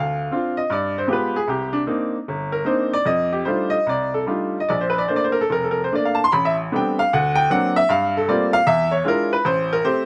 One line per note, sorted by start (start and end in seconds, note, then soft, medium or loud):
0.00 0.27 D2 medium
0.00 0.56 F5 medium
0.31 0.58 C4 medium
0.31 0.59 D4 soft
0.31 0.59 F4 medium
0.57 0.70 D#5 medium
0.70 1.04 G2 medium
0.70 0.97 D5 medium
0.98 1.10 C5 medium
1.07 1.36 G#3 medium
1.07 1.36 B3 medium
1.07 1.37 F4 soft
1.07 1.37 G4 medium
1.13 1.37 B4 medium
1.36 1.49 G#4 medium
1.48 1.82 C2 medium
1.48 1.74 G4 medium
1.73 1.81 D4 medium
1.86 2.15 A#3 medium
1.86 2.14 C4 soft
1.86 2.15 D4 medium
1.86 2.15 D#4 medium
2.28 2.61 G1 medium
2.52 2.65 A#4 medium
2.65 2.93 A#3 medium
2.65 2.93 C4 medium
2.65 2.94 D4 soft
2.65 2.94 D#4 medium
2.65 2.92 C5 medium
2.93 3.06 D5 medium
3.05 3.41 F2 medium
3.05 3.32 D#5 medium
3.33 3.46 G4 medium
3.45 3.74 G3 medium
3.45 3.75 A3 soft
3.45 3.75 D4 soft
3.45 3.75 D#4 soft
3.45 3.75 F4 medium
3.45 3.72 C5 medium
3.70 3.85 D#5 loud
3.87 4.23 C2 medium
3.87 4.15 D5 medium
4.14 4.23 A4 medium
4.26 4.57 G3 medium
4.26 4.57 A3 soft
4.26 4.57 D4 soft
4.26 4.57 D#4 soft
4.26 4.57 F4 medium
4.60 4.68 D#5 medium
4.69 5.06 A#1 medium
4.69 4.83 D5 medium
4.81 4.96 C5 medium
4.90 5.00 B4 medium
4.98 5.08 D5 medium
5.08 5.39 A3 soft
5.08 5.39 A#3 soft
5.08 5.39 D4 medium
5.08 5.19 C5 medium
5.16 5.23 D5 medium
5.24 5.38 C5 medium
5.32 5.42 A#4 medium
5.41 5.50 A4 medium
5.50 5.86 F1 medium
5.50 5.65 A#4 medium
5.64 5.77 A4 medium
5.71 5.81 A#4 medium
5.84 5.91 C5 medium
5.92 6.21 A3 medium
5.92 6.21 A#3 soft
5.92 6.21 D4 medium
5.92 6.07 D5 medium
6.05 6.19 F5 medium
6.15 6.23 A5 loud
6.24 6.31 C6 loud
6.32 6.68 A1 medium
6.32 6.45 B5 loud
6.45 6.53 E5 medium
6.72 7.00 G3 medium
6.72 7.00 A3 soft
6.72 7.00 B3 soft
6.72 7.00 C4 soft
6.72 7.00 D4 medium
6.72 7.00 G5 medium
6.99 7.12 F5 loud
7.13 7.46 D2 medium
7.13 7.38 F#5 medium
7.35 7.49 G5 loud
7.50 7.78 F#3 medium
7.50 7.78 A#3 medium
7.50 7.78 C4 medium
7.50 7.78 D4 medium
7.50 7.76 F#5 loud
7.76 7.89 E5 loud
7.89 8.23 G2 medium
7.89 8.15 F5 loud
8.17 8.29 A4 medium
8.28 8.55 G3 medium
8.28 8.55 A3 medium
8.28 8.56 A#3 medium
8.28 8.56 C4 medium
8.28 8.55 F4 medium
8.28 8.53 D5 medium
8.53 8.66 F5 loud
8.67 9.01 E2 medium
8.67 8.92 E5 loud
8.91 9.05 C#5 medium
9.04 9.32 G#3 medium
9.04 9.33 D4 medium
9.04 9.34 E4 medium
9.04 9.33 F4 medium
9.04 9.32 A#4 medium
9.33 9.45 B4 medium
9.45 9.79 A1 medium
9.45 9.71 C5 loud
9.73 9.85 A#4 loud
9.85 10.05 A3 medium
9.85 10.05 C4 medium
9.85 10.05 G4 medium
9.85 10.05 C5 loud